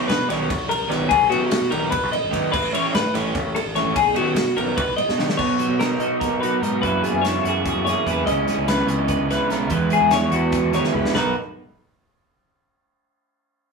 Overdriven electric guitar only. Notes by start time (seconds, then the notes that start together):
0.10 muted overdriven electric guitar stroke
0.29 D#3 F#3 B3 D#4
0.50 muted overdriven electric guitar stroke
0.69 muted overdriven electric guitar stroke
0.89 D#3 F#3 B3 D#4
1.08 muted overdriven electric guitar stroke
1.31 D#3 F#3 B3 D#4
1.51 muted overdriven electric guitar stroke
1.70 D#3 F#3 B3 D#4
1.92 muted overdriven electric guitar stroke
2.13 muted overdriven electric guitar stroke
2.31 D#3 F#3 B3 D#4
2.53 muted overdriven electric guitar stroke
2.73 E3 A3 C#4 E4
2.93 muted overdriven electric guitar stroke
3.14 E3 A3 C#4 E4
3.34 muted overdriven electric guitar stroke
3.55 muted overdriven electric guitar stroke
3.76 E3 A3 C#4 E4
3.97 muted overdriven electric guitar stroke
4.15 D#3 F#3 B3 D#4
4.36 muted overdriven electric guitar stroke
4.57 D#3 F#3 B3 D#4
4.78 muted overdriven electric guitar stroke
4.98 muted overdriven electric guitar stroke
5.19 D#3 F#3 B3 D#4
5.38 B2 F#3 B3 D#4
5.81 B2 F#3 B3 D#4
6.42 F#3 B3 D#4
6.60 B2 F#3 B3 D#4
6.81 F#2 C#3 E3 A#3 E4
7.22 C#3 E3 A#3 E4
7.85 E3 A#3 E4
8.06 F#2 C#3 E3 A#3 E4
8.25 C#3 G#3 C#4 E4
8.66 C#3 G#3 C#4 E4
9.29 G#3 C#4 E4
9.49 C#3 G#3 C#4 E4
9.68 E3 G#3 B3 E4
10.10 E3 G#3 B3 E4
10.72 G#3 B3 E4
10.93 E3 G#3 B3 E4
11.12 B2 F#3 B3 D#4